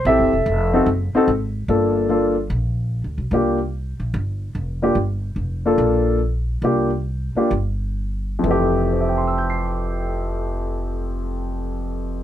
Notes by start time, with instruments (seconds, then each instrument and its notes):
0.05 upright bass A1, grand piano C4 E4 G4 A4 E5
0.19 upright bass F1
0.33 upright bass E1
0.46 upright bass F1
0.73 grand piano C4 D#4 F#4 A4
0.86 upright bass F#1
1.14 grand piano C4 D#4 F#4 A4, muted upright bass stroke
1.27 upright bass G#1
1.68 upright bass G1, grand piano A#3 D4 F4 A4
2.09 grand piano A#3 D4 F4 A4
2.50 upright bass A#1
3.04 upright bass D2
3.18 upright bass B1
3.31 upright bass C2, grand piano A#3 D4 F4 G4
4.00 upright bass A#1
4.14 upright bass G1
4.55 upright bass F1
4.82 grand piano A#3 D4 F4 G4
4.95 upright bass G1
5.36 upright bass F1
5.66 grand piano A#3 D4 F4 A4
5.78 upright bass A#1
6.62 upright bass C2, grand piano A#3 D4 F4 G4
7.35 grand piano A#3 D4 F4 G4, muted upright bass stroke
7.51 upright bass G1
8.39 grand piano F2 E3
8.44 upright bass F1, grand piano A3
8.51 grand piano G4
8.93 grand piano C5
9.01 grand piano E5
9.09 grand piano G5
9.18 grand piano C6
9.28 grand piano E6
9.38 grand piano G6
9.50 grand piano C7